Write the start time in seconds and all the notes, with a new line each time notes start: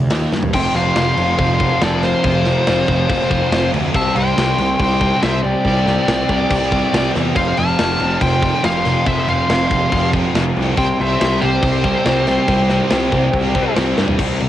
Already playing: D2
0.10 D#2 D#3 A#3 D#4, snare, open hi-hat
0.32 G2 D#3 A#3, snare
0.43 floor tom
0.53 F1 F2 C3 F3 C5 G5, kick, crash
0.74 F1 F2 C3 F3 C5 F5, snare, crash
0.96 F1 F2 C3 F3, snare, crash
1.17 F1 F2 C3 F3, crash
1.38 F1 F2 C3 F3 C5 F5, kick, crash
1.60 F2 C3 F3, kick, crash
1.81 F1 F2 C3 F3 A4 D5, snare, crash
2.03 F2 C3 F3 F4 C5, snare, crash
2.24 F1 F2 C3 F3, kick, crash
2.45 F2 C3 F3, snare, crash
2.67 F1 F2 C3 F3, snare, crash
2.88 F1 F2 C3 F3, kick, crash
3.09 F1 F2 C3 F3, kick, crash
3.30 F2 C3 F3, kick, crash
3.52 F1 F2 C3 F3, snare, crash
3.73 D2 F2 C3 F3, crash
3.94 C2 C3 G3 C4 E5 A5, kick, crash
4.16 C2 C3 G3 C4 C5 G5, crash
4.37 C2 C3 G3 C4, snare, crash
4.58 C2 C3 G3 C4, crash
4.80 C2 C3 G3 C4 C5 G5, kick, crash
5.01 C3 G3 C4, kick, crash
5.22 C2 C3 G3 C4 C5 E5, snare, crash
5.43 C3 G3 C4 G4 D5, crash
5.65 C2 C3 G3 C4, kick, crash
5.86 C3 G3 C4, snare, crash
6.08 C2 C3 G3 C4, snare, crash
6.29 C2 C3 G3 C4, kick, crash
6.50 C2 C3 G3 C4, kick, crash
6.72 C3 G3 C4, kick, crash
6.93 C2 C3 G3 C4, snare, crash
7.15 E2 C3 G3 C4, snare, crash
7.35 F1 F2 C3 F3 C5 F5, kick, crash
7.57 F1 F2 C3 F3 F5 A5, crash
7.78 F1 F2 C3 F3, snare, crash
7.99 F1 F2 C3 F3, crash
8.21 F1 F2 C3 F3 C5 G5, kick, crash
8.43 F2 C3 F3, kick, crash
8.64 F1 F2 C3 F3 C5 F5, snare, crash
8.85 F2 C3 F3, snare, crash
9.07 F1 F2 C3 F3 C5 E5, kick, crash
9.28 F2 C3 F3 C5 F5, crash
9.49 F1 F2 C3 F3, snare, crash
9.70 F1 F2 C3 F3, kick, crash
9.91 F1 F2 C3 F3, kick, crash
10.13 F2 C3 F3, kick, crash
10.35 F1 F2 C3 F3, snare, crash
10.56 C2 F2 C3 F3, crash
10.77 C2 C3 G3 C4 C5 G5, kick, crash
10.99 C2 C3 G3 C4 C5 E5, snare, crash
11.21 C2 C3 G3 C4, snare, crash
11.41 C2 C3 G3 C4 G4 C5, crash
11.63 C2 C3 G3 C4, kick, crash
11.84 C3 G3 C4, kick, crash
12.05 C2 C3 G3 C4, snare, crash
12.27 C3 G3 C4, snare, crash
12.48 C2 C3 G3 C4, kick, crash
12.69 C3 G3 C4, snare, crash
12.90 C2 C3 G3 C4, snare, crash
13.12 C2 C3 G3 C4, kick, crash
13.33 C2 C3 G3 C4, kick, crash
13.55 C3 G3 C4, kick, crash
13.76 C2 C3 G3 C4, snare, crash
13.97 G2 C3 G3 C4, snare
14.08 floor tom
14.19 C2 C3 G3 C4, kick, crash
14.40 C2 C3 G3, crash